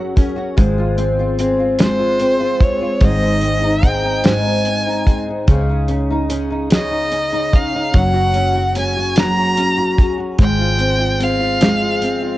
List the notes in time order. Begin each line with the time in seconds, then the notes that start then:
Already playing: F#1 F#3 C#4 F#4 G#4 A#4
0.16 C#4 G#4 A#4, kick, closed hi-hat
0.36 F#4
0.57 G#1 G#2 F3 G#3 C4 F4 G#4, kick, closed hi-hat
0.78 F4
0.97 C4, closed hi-hat
1.19 F4
1.38 G#3 C4 F4 G#4, closed hi-hat
1.59 F4
1.78 G#2 F3 G#3 C4 F4 G#4 C5, snare, closed hi-hat
1.99 F4
2.20 C4, closed hi-hat
2.40 F4
2.60 G#3 F4 G#4 C#5, kick, closed hi-hat
2.81 F4
3.00 G#1 G#2 D#3 G#3 C4 D#4 G#4 D#5, kick, closed hi-hat
3.22 D#4
3.41 C4, closed hi-hat
3.63 D#4
3.82 G#3 C4 D#4 G#4 G5, kick, closed hi-hat
4.04 D#4
4.24 G#2 D#3 G#3 C4 D#4 G#4 G#5, snare, closed hi-hat
4.45 D#4
4.65 C4, closed hi-hat
4.86 D#4
5.06 G#3 C4 D#4 G#4, kick, closed hi-hat
5.28 D#4
5.47 C#2 C#3 G#3 C#4 D#4 G#4, kick, closed hi-hat
5.69 D#4
5.88 C#4, closed hi-hat
6.10 D#4
6.29 G#3 C#4 D#4 G#4, closed hi-hat
6.51 D#4
6.70 C#3 G#3 C#4 D#4 G#4 D#5, snare, closed hi-hat
6.91 D#4
7.12 C#4, closed hi-hat
7.33 D#4
7.52 C#4 D#4 G#4 F5, kick, closed hi-hat
7.75 D#4
7.94 F#1 F#3 A#3 C#4 F#4 G#4 F#5, kick, closed hi-hat
8.14 F#4
8.34 C#4, closed hi-hat
8.56 F#4
8.75 A#3 C#4 F#4 G#4 G#5, closed hi-hat
8.97 F#4
9.16 F#3 A#3 C#4 F#4 G#4 A#5, snare, closed hi-hat
9.37 F#4
9.57 C#4, closed hi-hat
9.77 F#4
9.97 C#4 F#4 G#4, kick, closed hi-hat
10.18 F#4
10.38 G#1 G#2 F3 G#3 C4 F4 G#4 G5, kick, closed hi-hat
10.59 F4
10.78 C4, closed hi-hat
10.99 F4
11.20 G#3 C4 F4 G#4 F5, closed hi-hat
11.40 F4
11.60 G#2 F3 G#3 C4 F4 G#4, snare, closed hi-hat
11.81 F4
12.01 C4, closed hi-hat
12.22 F4